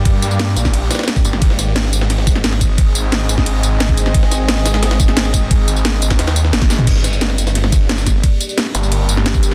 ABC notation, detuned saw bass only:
X:1
M:4/4
L:1/8
Q:1/4=176
K:Gphr
V:1 name="Detuned saw bass" clef=bass
G,,3 B,,,2 z2 G,,, | A,,,3 A,,,4- A,,,- | A,,,3 A,,,4- A,,, | A,,,3 A,,,4- A,,,- |
A,,,3 A,,, E,,2 A,,,2 | G,,,3 G,,,2 G,,,3 | z3 G,,,2 G,,,3 |]